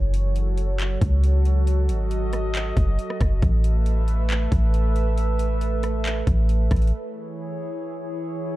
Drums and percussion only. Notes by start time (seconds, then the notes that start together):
0.14 closed hi-hat
0.36 closed hi-hat
0.57 closed hi-hat
0.79 clap, closed hi-hat
1.01 kick, closed hi-hat
1.24 closed hi-hat
1.45 closed hi-hat
1.67 closed hi-hat
1.89 closed hi-hat
2.11 closed hi-hat
2.33 cross-stick, closed hi-hat
2.55 clap, closed hi-hat
2.77 kick, closed hi-hat
2.99 closed hi-hat
3.10 cross-stick
3.21 kick, cross-stick, closed hi-hat
3.42 kick, closed hi-hat
3.64 closed hi-hat
3.86 closed hi-hat
4.08 closed hi-hat
4.30 clap, closed hi-hat
4.52 kick, closed hi-hat
4.74 closed hi-hat
4.96 closed hi-hat
5.17 closed hi-hat
5.39 closed hi-hat
5.61 closed hi-hat
5.83 cross-stick, closed hi-hat
6.05 clap, closed hi-hat
6.27 kick, closed hi-hat
6.49 closed hi-hat
6.71 kick, cross-stick, closed hi-hat
6.76 closed hi-hat
6.82 closed hi-hat
6.87 closed hi-hat